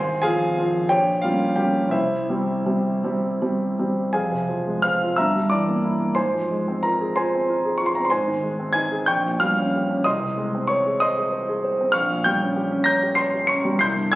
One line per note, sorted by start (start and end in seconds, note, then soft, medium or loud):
0.00 0.20 G#1 medium
0.00 0.22 C5 medium
0.00 0.20 G#5 medium
0.00 0.23 C6 loud
0.22 0.53 F3 medium
0.22 0.54 C4 medium
0.22 0.54 F4 medium
0.22 0.85 G#4 medium
0.22 0.85 F5 medium
0.22 0.89 G#5 loud
0.58 0.87 F3 medium
0.58 0.87 C4 medium
0.58 0.87 F4 medium
0.89 1.23 A#1 medium
0.89 1.21 G4 medium
0.89 1.21 C#5 medium
0.89 1.23 G5 loud
1.22 1.54 G3 medium
1.22 1.55 A#3 medium
1.22 1.55 C#4 medium
1.22 1.55 F4 medium
1.22 1.57 F5 medium
1.56 1.90 G3 soft
1.56 1.90 A#3 soft
1.56 1.90 C#4 medium
1.56 1.90 G4 medium
1.56 1.92 G5 medium
1.89 2.27 C2 medium
1.89 3.00 E4 medium
1.89 2.99 C5 medium
1.89 3.03 E5 medium
2.30 2.63 G3 medium
2.30 2.63 C4 medium
2.66 3.00 G3 medium
2.66 3.00 C4 medium
3.04 3.38 G3 medium
3.04 3.38 C4 medium
3.42 3.75 G3 medium
3.42 3.76 C4 medium
3.79 4.11 G3 soft
3.79 4.11 C4 medium
4.13 5.14 F2 medium
4.13 4.79 G#4 medium
4.13 4.79 F5 medium
4.13 4.82 G#5 medium
4.32 4.59 C3 soft
4.49 4.76 F3 soft
4.67 4.94 G#3 soft
4.82 5.11 C4 medium
4.82 5.15 F5 medium
4.82 5.17 F6 medium
5.02 5.18 F4 medium
5.16 6.14 G2 medium
5.16 5.48 E5 medium
5.16 5.48 A#5 medium
5.16 5.50 E6 medium
5.36 5.61 G3 soft
5.50 5.77 E3 soft
5.50 6.12 D5 medium
5.50 6.16 D6 medium
5.69 5.94 A#3 soft
5.84 6.10 E4 medium
6.01 6.17 A#3 soft
6.15 8.07 G#2 medium
6.15 6.78 C5 medium
6.15 6.79 G#5 medium
6.15 6.82 C6 medium
6.34 6.60 F3 soft
6.52 6.77 G#3 soft
6.68 6.93 C4 medium
6.83 7.10 F4 soft
6.83 7.13 A#4 medium
6.83 7.15 A#5 medium
7.01 7.26 G#4 soft
7.16 7.42 F4 medium
7.16 7.72 C5 medium
7.16 7.73 G#5 medium
7.16 7.76 C6 medium
7.35 7.58 C4 soft
7.50 7.74 F4 medium
7.65 7.89 G#4 medium
7.78 8.05 F4 soft
7.78 7.85 C#6 medium
7.86 7.94 C6 medium
7.95 8.12 C4 soft
7.95 8.03 A#5 medium
8.05 8.09 C6 medium
8.10 9.05 G#2 medium
8.10 8.71 C5 medium
8.10 8.71 G#5 medium
8.10 8.74 C6 medium
8.28 8.52 D#3 soft
8.43 8.68 G#3 medium
8.60 8.85 C4 soft
8.73 9.01 D#4 medium
8.73 9.05 G#5 medium
8.73 9.06 G#6 medium
8.92 9.08 G#4 medium
9.06 10.02 A#1 medium
9.06 9.38 G5 medium
9.06 9.38 C#6 medium
9.06 9.40 G6 medium
9.26 9.51 A#2 soft
9.40 9.67 G3 soft
9.40 10.01 F5 medium
9.40 10.04 F6 medium
9.59 9.83 C#4 medium
9.75 9.99 G4 medium
9.90 10.05 C#4 medium
10.04 11.90 C2 medium
10.04 10.66 D#5 medium
10.04 10.66 C6 medium
10.04 10.69 D#6 medium
10.23 10.48 C3 soft
10.38 10.63 G#3 medium
10.55 10.80 C4 medium
10.67 10.95 C5 medium
10.67 10.98 C#5 medium
10.67 11.00 C#6 medium
10.86 11.11 G#4 medium
11.00 11.27 C5 medium
11.00 11.90 D#5 medium
11.00 11.90 C6 medium
11.00 11.93 D#6 loud
11.17 11.41 G#4 medium
11.32 11.57 C5 medium
11.49 11.73 G#4 medium
11.64 11.88 C5 medium
11.81 11.95 C4 medium
11.92 13.75 A#1 medium
11.92 12.22 F5 medium
11.92 12.22 C#6 medium
11.92 12.24 F6 loud
12.10 12.34 A#2 soft
12.24 12.49 G3 medium
12.24 12.82 G5 medium
12.24 12.82 C#6 medium
12.24 12.84 G6 medium
12.42 12.65 C#4 medium
12.56 12.80 G4 medium
12.71 12.95 C#4 medium
12.84 13.10 C#5 medium
12.84 13.14 A#5 medium
12.84 13.14 G6 medium
12.84 13.15 A#6 loud
13.03 13.26 G4 medium
13.15 13.41 C#5 medium
13.15 13.45 C6 medium
13.15 13.47 C7 loud
13.34 13.58 G4 medium
13.47 13.73 C#4 medium
13.47 13.77 C#6 medium
13.47 13.79 C#7 loud
13.65 13.79 G3 medium
13.79 14.15 C2 medium
13.79 14.10 C6 medium
13.79 14.10 G6 medium
13.79 14.11 C7 loud
13.96 14.15 G2 medium
14.12 14.15 G#6 loud